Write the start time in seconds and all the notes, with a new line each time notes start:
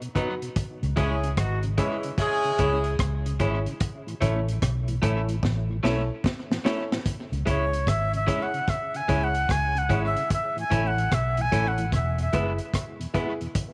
0.01 B2, closed hi-hat
0.15 F#3 B3 D#4 F#4 B4, kick, closed hi-hat
0.42 B2, closed hi-hat
0.56 kick, closed hi-hat
0.82 C#2 C#3, closed hi-hat
0.96 C#2 G#3 C#4 E4 G#4 C#5, kick, closed hi-hat
1.23 C#3, closed hi-hat
1.37 G#1 F#3 B3 D#4 F#4, kick, cross-stick, closed hi-hat
1.63 C#3, closed hi-hat
1.77 E3 G#3 C#4 E4 G#4 C#5, kick, closed hi-hat
2.03 C#3, closed hi-hat
2.18 G#3 C#4 E4 G#4, kick, closed hi-hat
2.44 C#3, closed hi-hat
2.58 C#2 G#3 C#4 E4 G#4 C#5, kick, closed hi-hat
2.84 closed hi-hat
2.99 C#2, kick, cross-stick, closed hi-hat
3.26 C#3, closed hi-hat
3.40 G#1 G#3 C#4 E4 G#4 C#5, kick, closed hi-hat
3.66 C#3, closed hi-hat
3.80 kick, closed hi-hat
4.07 A2 E3, closed hi-hat
4.20 A1 A3 C#4 E4 A4 C#5, kick, closed hi-hat
4.47 A2 E3, closed hi-hat
4.62 B1, kick, cross-stick, closed hi-hat
4.88 A2 E3, closed hi-hat
5.02 A1 A3 C#4 E4 A4 C#5, kick, closed hi-hat
5.28 A2 E3, closed hi-hat
5.43 A1, kick, snare
5.69 A2 E3
5.83 B1 A3 C#4 E4 A4 C#5, snare
6.24 kick, snare
6.50 A2 E3, snare
6.64 A3 C#4 E4 A4 C#5, snare
6.91 A2 E3, snare
7.06 kick, closed hi-hat
7.32 C#2 C#3, closed hi-hat
7.45 C#2 G#3 C#4 E4 G#4 C#5, kick, closed hi-hat
7.72 C#3, closed hi-hat
7.87 G#1 E5, kick, cross-stick, closed hi-hat
8.13 C#3 E5, closed hi-hat
8.27 G#3 C#4 E4 G#4 C#5, kick, closed hi-hat
8.43 F#5
8.54 C#3, closed hi-hat
8.68 E5, kick, cross-stick, closed hi-hat
8.94 C#3 G#5, closed hi-hat
9.08 C#2 G#3 C#4 E4 G#4 C#5, kick, closed hi-hat
9.24 F#5
9.35 closed hi-hat
9.49 C#2 G#5, kick, cross-stick, closed hi-hat
9.75 C#3 F#5, closed hi-hat
9.89 G#1 G#3 C#4 E4 G#4 C#5, kick, closed hi-hat
10.06 E5
10.15 C#3, closed hi-hat
10.30 E5, kick, closed hi-hat
10.56 A2 E3 G#5, closed hi-hat
10.70 A1 A3 C#4 E4 A4 C#5, kick, closed hi-hat
10.87 F#5
10.97 A2 E3, closed hi-hat
11.12 B1 E5, kick, cross-stick, closed hi-hat
11.37 A2 E3, closed hi-hat
11.41 G#5
11.51 A1 A3 C#4 E4 A4 C#5, kick, closed hi-hat
11.68 F#5
11.78 A2 E3, closed hi-hat
11.92 E1 E5, kick, cross-stick, closed hi-hat
12.18 E2 B2 E5, closed hi-hat
12.32 F#1 G#3 B3 E4 G#4 B4, kick, closed hi-hat
12.58 closed hi-hat
12.74 kick, cross-stick, closed hi-hat
12.99 E2 B2, closed hi-hat
13.14 G#3 B3 E4 G#4 B4, kick, closed hi-hat
13.40 E2 B2, closed hi-hat
13.55 kick, closed hi-hat